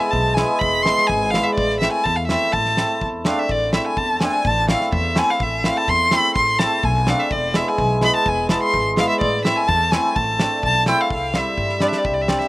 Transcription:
Already playing: hammered dulcimer G#3
0.00 violin G#5
0.11 upright bass B1, violin A5, kick
0.34 hammered dulcimer G#3 B3, violin G#5, snare
0.38 hammered dulcimer E4
0.59 upright bass E1, violin B5, kick
0.82 hammered dulcimer G#3 B3, violin C6, snare
0.86 hammered dulcimer E4
0.98 snare
1.07 upright bass G#1, violin G#5, kick
1.30 hammered dulcimer G#3 B3, violin F5, snare
1.35 hammered dulcimer E4
1.44 violin E5
1.55 upright bass A1, violin D5, kick
1.70 snare
1.80 hammered dulcimer A3 C4 E4, violin E5, snare
1.92 violin G#5
2.04 upright bass E2, violin A5, kick
2.16 violin F5
2.27 hammered dulcimer A3 C4 E4, violin E5, snare
2.52 upright bass A1, violin A5, kick
2.65 snare
2.76 hammered dulcimer A3 C4 E4, snare
3.01 upright bass E2, kick
3.24 hammered dulcimer A3 C4 D4, violin F5, snare
3.39 violin E5
3.49 upright bass A1, violin D5, kick
3.72 hammered dulcimer A3 C4 E4, violin E5, snare
3.87 violin G#5
3.97 upright bass E2, violin A5, kick
4.20 hammered dulcimer A3 C4 D4, violin G#5, snare
4.45 upright bass A1, violin A5, kick
4.68 hammered dulcimer A3 C4 E4, violin F5, snare
4.81 snare
4.92 upright bass E2, violin E5, kick
5.15 hammered dulcimer A3 C4 E4, violin G#5, snare
5.30 violin F5
5.40 upright bass A1, violin E5, kick
5.64 hammered dulcimer A3 C4 E4, violin F5, snare
5.77 violin A5
5.88 upright bass E2, violin C6, kick
6.11 hammered dulcimer A3 C4 E4, violin B5, snare
6.35 upright bass A1, violin C6, kick
6.59 hammered dulcimer A3 C4 E4, violin A5, snare
6.83 upright bass B1, violin G#5, kick
7.07 hammered dulcimer A3 C4 D4, violin F5, snare
7.20 violin E5
7.31 upright bass E1, violin D5, kick
7.54 hammered dulcimer G#3 B3 E4, violin E5, snare
7.68 violin G#5
7.78 upright bass B1, kick
8.01 hammered dulcimer G#3 B3 E4, violin B5, snare
8.16 violin A5
8.26 upright bass E1, violin G#5, kick
8.49 hammered dulcimer G#3 B3 E4, violin A5, snare
8.63 violin C6
8.73 upright bass G#1, kick
8.96 hammered dulcimer G#3 B3 E4, violin F5, snare
9.09 violin E5
9.21 upright bass A1, violin D5, kick
9.44 hammered dulcimer A3 C4 E4, violin E5, snare
9.56 violin G#5
9.67 upright bass E2, violin A5, kick
9.91 hammered dulcimer A3 C4 E4, violin G#5, snare
10.15 upright bass A1, violin A5, kick
10.39 hammered dulcimer A3 C4 D4, snare
10.63 upright bass B1, violin A5, kick
10.86 hammered dulcimer A3 C4 E4, violin G5, snare
11.01 violin F5
11.10 upright bass C2, violin F5, kick
11.34 hammered dulcimer G3 C4 E4, violin E5, snare
11.58 upright bass G2, kick
11.69 snare
11.80 hammered dulcimer G3 C4 D4, violin D5, snare
11.89 violin E5, snare
11.98 violin D5
12.05 upright bass C2, violin E5, kick
12.14 violin D5
12.22 violin E5
12.28 hammered dulcimer G3 C4 D4, violin D5, snare
12.38 violin E5, snare

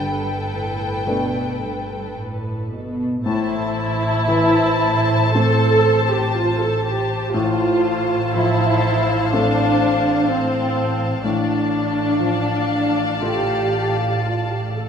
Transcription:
Already playing: double bass section G1, cello section G2, felt piano G2, violin section A4 B4 G5, viola section B4
0.00 felt piano D3
0.52 cello section A2
1.07 cello section B2, felt piano A3 D4 B4
1.62 cello section G2
2.17 cello section A2
2.72 cello section B2
3.25 double bass section A1, cello section A2, felt piano A2, viola section E4, violin section C5 A5
4.28 felt piano E3
5.34 felt piano A3 C4 A4, viola section A4
6.11 viola section G4
6.36 viola section F4
6.60 viola section A4
6.84 viola section G4
7.33 double bass section A1, felt piano A2, cello section A2, viola section F4, violin section C5 F5 A5
8.33 felt piano F3, viola section E4
9.32 felt piano A3 C4 A4, viola section D4
10.28 viola section C4
11.23 double bass section A1, cello section A2, felt piano A2, viola section D4, violin section D5 F5 A5
12.20 felt piano F3
13.21 felt piano A3 F4 A4, viola section G4
14.22 viola section F4
14.48 viola section G4
14.74 viola section A4

